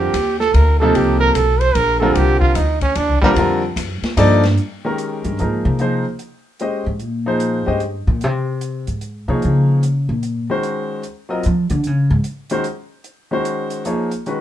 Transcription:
Already playing: upright bass F2, grand piano D3 G3 C4 F4 A#4, trombone G4
0.14 upright bass D#2, hi-hat pedal, ride
0.40 trombone A4, snare
0.54 upright bass D2, trombone A#4, ride
0.80 grand piano C3 F3 A#3 D#4 A4, trombone A4
0.94 upright bass C2, trombone G4, ride
1.20 trombone A#4
1.35 upright bass B1, trombone A4, hi-hat pedal, ride
1.60 trombone C5, ride
1.75 upright bass A#1, trombone A#4, ride
2.00 grand piano D3 G3 C4 F4 A#4, trombone A4
2.15 upright bass C2, trombone G4, ride
2.41 trombone F4, kick
2.55 upright bass D2, trombone D#4, hi-hat pedal, ride
2.81 trombone C#4, kick, ride
2.95 upright bass D#2, trombone D4, ride
3.08 upright bass C2
3.22 upright bass A#1, grand piano D3 G3 C4 F4 A#4, trombone G3, kick
3.36 upright bass F2, grand piano D3 G3 C4 F4 A#4, ride
3.76 upright bass F#2, hi-hat pedal, ride
4.02 muted upright bass stroke, snare, ride
4.17 upright bass G2, grand piano F3 A#3 D#4 A4 D5, hi-hat pedal, ride
4.43 snare, ride
4.57 closed hi-hat
4.85 grand piano D#3 G#3 C#4 G4 A#4
4.98 closed hi-hat
5.24 upright bass G2, closed hi-hat
5.39 upright bass G#2, grand piano F3 A#3 D#4 G#4 A#4, closed hi-hat
5.65 upright bass C3
5.79 grand piano F3 A#3 D#4 G#4 C5, closed hi-hat
6.19 closed hi-hat
6.59 grand piano G#3 C#4 G4 C5 D#5, closed hi-hat
6.86 upright bass G#2
6.99 upright bass A#2, closed hi-hat
7.26 grand piano F3 A#3 D#4 G#4 C5
7.40 closed hi-hat
7.66 upright bass G2, grand piano G#3 C#4 G4 C5 D#5
7.80 closed hi-hat
8.07 upright bass A#2
8.21 upright bass C3, closed hi-hat
8.61 closed hi-hat
8.87 upright bass G#2, closed hi-hat
9.01 closed hi-hat
9.28 upright bass C3, grand piano F3 A#3 D#4 G#4 C#5
9.42 upright bass C#3, closed hi-hat
9.83 closed hi-hat
10.09 upright bass A#2
10.23 closed hi-hat
10.50 grand piano D#3 G#3 C#4 F#4 C5
10.63 closed hi-hat
11.03 closed hi-hat
11.29 grand piano F#3 C4 F4 A#4 D#5
11.43 upright bass F3, closed hi-hat
11.70 upright bass D3, closed hi-hat
11.84 upright bass C#3, closed hi-hat
12.10 upright bass G#2
12.24 closed hi-hat
12.50 grand piano D#3 G#3 C#4 F#4 C5, closed hi-hat
12.64 closed hi-hat
13.04 closed hi-hat
13.31 grand piano D#3 G#3 C#4 F#4 C5
13.45 closed hi-hat
13.70 closed hi-hat
13.85 grand piano F3 A#3 D#4 G#4 C#5, closed hi-hat
14.11 closed hi-hat
14.26 grand piano D#3 G#3 C#4 F#4 B4, closed hi-hat

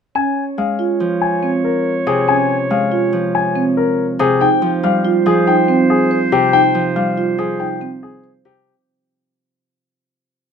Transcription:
0.15 marimba C#4, clarinet C#5, grand piano G#5
0.58 harp G#3, grand piano F5
0.79 marimba F4
1.00 harp F3
1.22 grand piano G#5
1.43 marimba C4
1.64 grand piano A#4
2.07 harp C3, grand piano G#4
2.28 marimba C#4, grand piano G#5
2.70 harp G#3, grand piano F5
2.92 marimba F4
3.13 harp F3
3.35 grand piano G#5
3.56 marimba C4
3.77 grand piano A#4
4.19 harp C3, grand piano G#4
4.41 marimba D#4, clarinet C5, grand piano G5
4.62 harp F3
4.83 harp G3, grand piano F5
5.05 marimba F4
5.26 harp F3, grand piano G#4
5.47 marimba D#4, grand piano G5
5.68 marimba C4
5.90 grand piano G#4
6.11 marimba C5
6.32 harp C3, grand piano G4
6.53 marimba D#4, grand piano G5
6.75 harp F3
6.96 harp G3, grand piano F5
7.18 marimba F4
7.38 harp F3, grand piano G#4
7.60 marimba D#4, grand piano G5
7.81 marimba C4
8.03 grand piano G#4
8.24 marimba C5
8.45 harp C3, grand piano G4

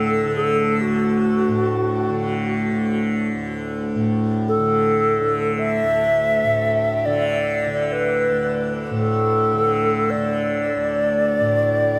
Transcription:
Already playing: tanpura D2 A2 D3, singing bowl A3, alto flute A4
0.25 tanpura D3
0.36 alto flute A4
0.82 alto flute F#4
0.87 tanpura D2
1.48 tanpura A2
2.10 tanpura D3
2.72 tanpura D3
3.35 tanpura D2
3.95 tanpura A2
4.48 alto flute A4
4.59 tanpura D3
5.20 tanpura D3
5.58 alto flute E5
5.83 tanpura D2
6.44 tanpura A2
6.97 alto flute E5
7.06 tanpura D3, alto flute D5
7.67 tanpura D3
7.92 alto flute B4
8.30 tanpura D2
8.91 tanpura A2
8.98 alto flute A4
9.54 tanpura D3
10.10 alto flute D5
10.17 tanpura D3
10.76 tanpura D2
11.40 tanpura A2

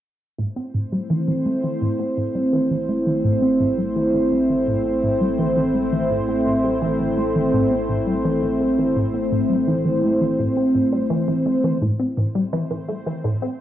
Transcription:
0.38 synth drone A1, synth arpeggio sound A2, analog synth pad A3 C4 E4 C5
0.56 synth arpeggio sound C4
0.74 synth arpeggio sound A2
0.92 synth arpeggio sound G3
1.10 synth arpeggio sound E3
1.28 synth arpeggio sound E3
1.46 synth arpeggio sound A3
1.64 synth arpeggio sound E3
1.81 synth arpeggio sound A2
1.99 synth arpeggio sound C4
2.17 synth arpeggio sound A2
2.35 synth arpeggio sound G3
2.53 synth arpeggio sound E3
2.71 synth arpeggio sound E3
2.89 synth arpeggio sound A3
3.06 synth arpeggio sound E3
3.24 synth arpeggio sound A2
3.42 synth arpeggio sound C4
3.60 synth arpeggio sound A2
3.78 synth arpeggio sound G3
3.96 synth arpeggio sound E3
4.14 synth arpeggio sound E3
4.32 synth arpeggio sound A3
4.50 synth arpeggio sound E3
4.68 synth arpeggio sound A2
4.85 synth arpeggio sound C4
5.03 synth arpeggio sound A2
5.21 synth arpeggio sound G3
5.39 synth arpeggio sound E3
5.57 synth arpeggio sound E3
5.75 synth arpeggio sound A3
5.92 synth arpeggio sound E3
6.10 synth arpeggio sound A2
6.28 synth arpeggio sound C4
6.46 synth arpeggio sound A2
6.64 synth arpeggio sound G3
6.82 synth arpeggio sound E3
7.00 synth arpeggio sound E3
7.18 synth arpeggio sound A3
7.36 synth arpeggio sound E3
7.53 synth arpeggio sound A2
7.71 synth arpeggio sound C4
7.89 synth arpeggio sound A2
8.07 synth arpeggio sound G3
8.25 synth arpeggio sound E3
8.43 synth arpeggio sound E3
8.60 synth arpeggio sound A3
8.78 synth arpeggio sound E3
8.96 synth arpeggio sound A2
9.14 synth arpeggio sound C4
9.32 synth arpeggio sound A2
9.50 synth arpeggio sound G3
9.68 synth arpeggio sound E3
9.85 synth arpeggio sound E3
10.03 synth arpeggio sound A3
10.21 synth arpeggio sound E3
10.39 synth arpeggio sound A2
10.57 synth arpeggio sound C4
10.75 synth arpeggio sound A2
10.93 synth arpeggio sound G3
11.10 synth arpeggio sound E3
11.28 synth arpeggio sound E3
11.46 synth arpeggio sound A3
11.64 synth arpeggio sound E3
11.81 synth arpeggio sound A2, analog synth pad A3 C4 E4 C5
12.00 synth arpeggio sound C4
12.17 synth arpeggio sound A2
12.35 synth arpeggio sound G3
12.53 synth arpeggio sound E3
12.71 synth arpeggio sound E3
12.89 synth arpeggio sound A3
13.07 synth arpeggio sound E3
13.24 synth arpeggio sound A2
13.42 synth arpeggio sound C4

